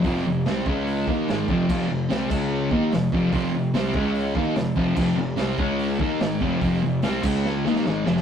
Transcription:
<<
  \new Staff \with { instrumentName = "Distorted electric guitar" } { \clef bass \time 4/4 \key f \minor \tempo 4 = 146 <f, c f>8 <f, c>8 <c g c'>8 <des aes des'>4 <ees bes ees'>8 <aes, ees aes>8 <f, c f>8 | <f, c f>8 <f, c>8 <c g c'>8 <des aes des'>4 <ees bes ees'>8 <f, c>8 <f, c f>8 | <f, c f>8 <f, c>8 <c g c'>8 <des aes des'>4 <ees bes ees'>8 <f, c>8 <f, c f>8 | <f, c f>8 <f, c>8 <c g c'>8 <des aes des'>4 <ees bes ees'>8 <aes, ees aes>8 <f, c f>8 |
<f, c f>8 <f, c>8 <c g c'>8 <des aes des'>4 <ees bes ees'>8 <aes, ees aes>8 <f, c f>8 | }
  \new Staff \with { instrumentName = "Fingered electric bass" } { \clef bass \time 4/4 \key f \minor f,,8 f,,8 c,8 des,4 ees,8 aes,,8 f,,8 | f,,8 f,,8 c,8 des,4 ees,8 f,,8 f,,8 | f,,8 f,,8 c,8 des,4 ees,8 f,,8 f,,8 | f,,8 f,,8 c,8 des,4 ees,8 aes,,8 f,,8 |
f,,8 f,,8 c,8 des,4 ees,8 aes,,8 f,,8 | }
  \new DrumStaff \with { instrumentName = "Drums" } \drummode { \time 4/4 <hho bd>16 sn8. <hho sn>8 bd8 hho8 bd8 <hho sn>8 bd8 | <cymc bd>16 sn8. <hho sn>8 <cymc bd>8 r8 bd8 <hho sn>8 bd8 | <hho bd>4 <hho sn>8 bd8 hho8 bd8 <hho sn>8 bd8 | <cymc bd>4 <hho sn>8 bd8 hho8 bd8 <hho sn>8 bd8 |
<hho bd>16 sn8. <hho sn>8 <cymc bd>8 sn8 sn16 sn16 sn8 sn16 sn16 | }
>>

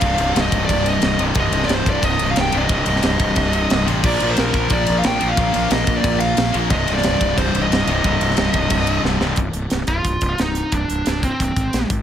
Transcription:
<<
  \new Staff \with { instrumentName = "Lead electric guitar" } { \time 4/4 \key c \minor \tempo 4 = 180 f''4 ees''8. d''8. ees''4 r8 | ees''8. d''16 c''8 d''8 ees''8. f''16 g''8 ees''8~ | ees''2.~ ees''8 r8 | d''8. c''16 bes'4 d''8. f''16 g''8. f''16~ |
f''4 ees''8. d''8. f''4 r8 | ees''8. d''4~ d''16 c''8. ees''8. ees''8~ | ees''2. r4 | r4. f'4. ees'4 |
d'4. c'2 r8 | }
  \new Staff \with { instrumentName = "Distorted electric guitar" } { \clef bass \time 4/4 \key c \minor <c, g, c>2.~ <c, g, c>8 <c, g, c>8 | <c, g, c>2.~ <c, g, c>8 <c, g, c>8 | <c, g, c>2.~ <c, g, c>8 <c, g, c>8 | <bes, f bes>2.~ <bes, f bes>8 <bes, f bes>8 |
<bes, f bes>2.~ <bes, f bes>8 <bes, f bes>8 | <c, g, c>2.~ <c, g, c>8 <c, g, c>8 | <c, g, c>2.~ <c, g, c>8 <c, g, c>8 | r1 |
r1 | }
  \new Staff \with { instrumentName = "Fingered electric bass" } { \clef bass \time 4/4 \key c \minor c,,8 c,,8 c,,8 c,,8 c,,4 c,,8 c,,8 | c,,8 c,,8 c,,8 c,,8 c,,8 c,,8 c,,8 c,,8 | c,,8 c,,8 c,,8 c,,8 c,,4 c,,8 a,,8 | bes,,8 bes,,8 bes,,8 bes,,8 bes,,8 bes,,8 bes,,8 bes,,8 |
bes,,8 bes,,8 bes,,8 bes,,8 bes,,4 bes,,8 bes,,8 | c,,8 c,,8 c,,8 c,,8 c,,8 c,,8 c,,8 c,,8 | c,,8 c,,8 c,,8 c,,8 c,,4 c,,8 c,,8 | c,,8 c,,8 c,,8 c,,8 c,,8 c,,8 c,,4 |
c,,8 c,,8 c,,4 c,,8 aes,,8 bes,,8 aes,,8 | }
  \new DrumStaff \with { instrumentName = "Drums" } \drummode { \time 4/4 <bd cymr>8 cymr8 <cymr sn>8 <bd cymr>8 <bd cymr>8 cymr8 <cymr sn>8 cymr8 | <bd cymr>8 cymr16 sn16 <cymr sn>8 <bd cymr>8 <bd cymr>8 cymr8 <cymr sn>8 cymr8 | <bd cymr>8 cymr16 sn16 <cymr sn>8 <bd cymr>8 <bd cymr>8 cymr8 <cymr sn>8 cymr8 | <cymc bd>8 cymr8 <cymr sn>8 <bd cymr>8 <bd cymr>8 cymr8 <cymr sn>8 cymr8 |
<bd cymr>8 cymr8 <cymr sn>8 <bd cymr>8 <bd cymr>8 cymr8 <cymr sn>8 cymr8 | <bd cymr>8 cymr16 sn16 <cymr sn>8 <bd cymr>8 <bd cymr>8 cymr8 <cymr sn>8 cymr8 | <bd cymr>8 cymr16 sn16 <cymr sn>8 <bd cymr>8 <bd cymr>8 cymr8 sn8 sn8 | <hh bd>8 hh8 <hh sn>8 <hh bd>8 <hh bd>8 <hh bd>8 <hh sn>8 hh8 |
<hh bd>8 hh8 <hh sn>8 <hh bd>8 <hh bd>8 <hh bd>8 <hh sn>8 <hh bd>8 | }
>>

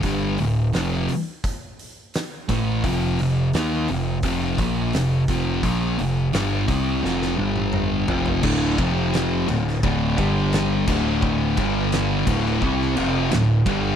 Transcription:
<<
  \new Staff \with { instrumentName = "Distorted electric guitar" } { \clef bass \time 4/4 \key d \phrygian \tempo 4 = 86 <g, d g>8 <d, a,>8 <f, c f>8 r2 <a, e a>8 | <f, c f>8 <f, c>8 <ees bes ees'>8 <f, c>8 <f, c f>8 <bes, f bes>8 <f, c>8 <f, c f>8 | <bes, f bes>8 <f, c>8 <g, d g>8 <c g c'>8 <f, c f>8 <g, d g>4 <f, c f>8 | <d, a, d>8 <f, c f>4 <d, a,>8 <d, a, d>8 <g, d g>4 <d, a, d>8~ |
<d, a, d>8 <g, d g>4 <d, a, d>8 <c g c'>8 <f, c f>8 <d, a,>8 <g, d g>8 | }
  \new Staff \with { instrumentName = "Distorted electric guitar" } { \clef bass \time 4/4 \key d \phrygian <g, d g>8 <d, a,>8 <f, c f>8 r2 <a, e a>8 | <f, c f>8 <f, c>8 <ees bes ees'>8 <f, c>8 <f, c f>8 <bes, f bes>8 <f, c>8 <f, c f>8 | <bes, f bes>8 <f, c>8 <g, d g>8 <c g c'>8 <f, c f>8 <g, d g>4 <f, c f>8 | <d, a, d>8 <f, c f>4 <d, a,>8 <d, a, d>8 <g, d g>4 <d, a, d>8~ |
<d, a, d>8 <g, d g>4 <d, a, d>8 <c g c'>8 <f, c f>8 <d, a,>8 <g, d g>8 | }
  \new Staff \with { instrumentName = "Distorted electric guitar" } { \clef bass \time 4/4 \key d \phrygian r1 | r1 | r1 | <d, a, d>8 <f, c f>4 <d, a,>8 <d, a, d>8 <g, d g>4 <d, a, d>8~ |
<d, a, d>8 <g, d g>4 <d, a, d>8 <c g c'>8 <f, c f>8 <d, a,>8 <g, d g>8 | }
  \new Staff \with { instrumentName = "Picked electric bass" } { \clef bass \time 4/4 \key d \phrygian g,,8 d,,8 f,,8 r2 a,,8 | f,,8 f,,8 ees,8 f,,8 f,,8 bes,,8 f,,8 f,,8 | bes,,8 f,,8 g,,8 c,8 f,,8 g,,4 f,,8 | d,,8 f,,4 d,,8 d,,8 g,,4 d,,8~ |
d,,8 g,,4 d,,8 c,8 f,,8 d,,8 g,,8 | }
  \new DrumStaff \with { instrumentName = "Drums" } \drummode { \time 4/4 <hho bd>8 hho8 <hho sn>8 hho8 <hho bd>8 hho8 <hho sn>8 <hho bd>8 | <hho bd>8 hho8 <hho sn>16 sn16 hho8 <hho bd>8 <hho bd>8 <hho sn>8 <hho bd>8 | <hho bd>8 hho8 <hho sn>8 <hho bd>8 sn16 sn8 tommh16 toml8 tomfh16 tomfh16 | <cymc bd>8 <bd cymr>8 <cymr sn>8 cymr16 sn16 <bd cymr>8 <bd cymr>8 <cymr sn>8 <cymc bd>8 |
bd8 <bd cymr>8 <cymr sn>8 <cymc bd>16 sn16 bd16 sn16 cymr8 <cymr sn>8 <bd cymr>8 | }
>>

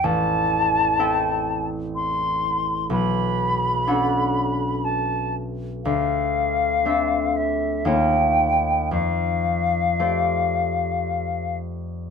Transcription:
<<
  \new Staff \with { instrumentName = "Flute" } { \time 3/4 \key f \lydian \tempo 4 = 60 a''4. r8 c'''4 | b''2 a''8 r8 | f''4. e''8 g''4 | f''2~ f''8 r8 | }
  \new Staff \with { instrumentName = "Harp" } { \time 3/4 \key f \lydian <a,, c'>4 <c' e' a' g''>2 | b,,4 <cis' d' a' fis''>2 | d,4 <c' d' a' e''>4 <ees, bes f' des'' ees''>4 | f,4 <a g' c'' d''>2 | }
>>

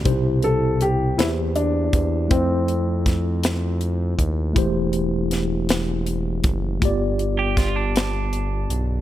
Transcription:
<<
  \new Staff \with { instrumentName = "Clean electric guitar" } { \time 6/8 \key c \major \tempo 4. = 53 r2. | r2. | r2. | r8. g'16 f'16 d'4. r16 | }
  \new Staff \with { instrumentName = "Grand piano" } { \time 6/8 \key c \major r8 a'8 g'8 e'8 d'4 | c'2~ c'8 r8 | r2. | r2. | }
  \new Staff \with { instrumentName = "Tine electric piano" } { \time 6/8 \key c \major <b, ees' e' g' c''>4. <bes e' g' c''>4. | <a e' f' c''>2. | <a e' g' c''>2. | <a b f' g' d''>2. | }
  \new Staff \with { instrumentName = "Tine electric piano" } { \clef bass \time 6/8 \key c \major c4. e4. | r2. | e4. r4. | g,4. r4. | }
  \new Staff \with { instrumentName = "Analog synth bass" } { \clef bass \time 6/8 \key c \major c,4. e,4 e,8 | f,2~ f,8 ees,8 | e,,2~ e,,8 fis,,8 | g,,2~ g,,8 b,,8 | }
  \new DrumStaff \with { instrumentName = "Drums" } \drummode { \time 6/8 <hh bd>8 hh8 hh8 <hh sn>8 hh8 <hh bd>8 | <hh bd>8 hh8 <hh bd sn>8 <hh sn>8 hh8 <hh bd>8 | <hh bd>8 hh8 <hh sn>8 <hh sn>8 hh8 <hh bd>8 | <hh bd>8 hh8 <hh bd sn>8 <hh sn>8 hh8 hh8 | }
>>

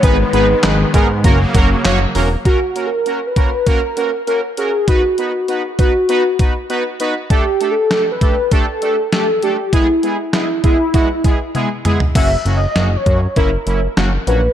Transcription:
<<
  \new Staff \with { instrumentName = "Soft synth lead" } { \time 4/4 \key fis \mixolydian \tempo 4 = 99 b'2 r2 | \tuplet 3/2 { fis'4 ais'8~ ais'8 b'4 } ais'4 ais'8 gis'8 | fis'4. fis'4. r4 | \tuplet 3/2 { g'4 a'8~ a'8 b'4 } a'4 a'8 g'8 |
e'4 e'8 e'4. r4 | \tuplet 3/2 { e''4 dis''8~ dis''8 cis''4 } ais'4 r8 b'8 | }
  \new Staff \with { instrumentName = "Analog polysynth" } { \time 4/4 \key fis \mixolydian <b dis' gis' b'>8 <b dis' gis' b'>8 <b dis' gis' b'>8 <b dis' gis' ais'>8 <ais cis' fis' ais'>8 <ais cis' fis' ais'>8 <ais cis' fis' cis''>8 <ais cis' fis' ais'>8 | <ais cis' fis' ais'>8 <ais cis' fis' ais'>8 <ais cis' fis' ais'>8 <ais cis' fis' ais'>8 <ais cis' fis' ais'>8 <ais cis' fis' ais'>8 <ais cis' fis' ais'>8 <ais cis' fis' ais'>8 | <b dis' fis' b'>8 <b dis' fis' b'>8 <b dis' fis' b'>8 <b dis' fis' b'>8 <b dis' fis' b'>8 <b dis' fis' b'>8 <b dis' fis' b'>8 <b dis' fis' b'>8 | <a d' g' a'>8 <a d' g' a'>8 <a d' g' a'>8 <a d' g' a'>8 <a d' g' a'>8 <a d' g' a'>8 <a d' g' a'>8 <a d' g' a'>8 |
<gis b e' gis'>8 <gis b e' gis'>8 <gis b e' gis'>8 <gis b e' gis'>8 <gis b e' fis'>8 <gis b e' gis'>8 <gis b e' gis'>8 <gis b e' gis'>8 | <fis ais cis' fis'>8 <fis ais cis' fis'>8 <fis ais cis' fis'>8 <fis ais cis' fis'>8 <fis ais cis' e'>8 <fis ais cis' e'>8 <fis ais cis' fis'>8 <fis ais cis' fis'>8 | }
  \new Staff \with { instrumentName = "Analog synth pad" } { \clef bass \time 4/4 \key fis \mixolydian <dis gis b>2 <cis fis ais>2 | r1 | r1 | r1 |
r1 | r1 | }
  \new Staff \with { instrumentName = "Analog synth bass" } { \clef bass \time 4/4 \key fis \mixolydian gis,,8 gis,,8 gis,,8 gis,8 fis,,8 fis,,8 fis,,8 e,,8 | r1 | r1 | r1 |
r1 | fis,,8 fis,,8 fis,,8 fis,8 fis,,8 fis,,8 fis,,8 ais,,8 | }
  \new DrumStaff \with { instrumentName = "Drums" } \drummode { \time 4/4 <hh bd>8 hh8 <hc hh sn>8 <hh bd>8 <hh bd>8 <hh bd>8 <hc hh sn>8 hho8 | <hh bd>8 hh8 hh8 <hh bd>8 <hh bd>8 hh8 hh8 hh8 | <hh bd>8 hh8 hh8 <hh bd>8 hh8 <hh bd>8 hh8 hh8 | <hh bd>8 hh8 <hh sn>8 <hh bd>8 <hh bd>8 hh8 <hh sn>8 hh8 |
<hh bd>8 hh8 <hh sn>8 <hh bd>8 <hh bd>8 <hh bd>8 <hh tommh>8 <hh toml>16 tomfh16 | <cymc bd>8 hh8 <hh sn>8 <hh bd>8 <hh bd>8 hh8 <hh sn>8 hh8 | }
>>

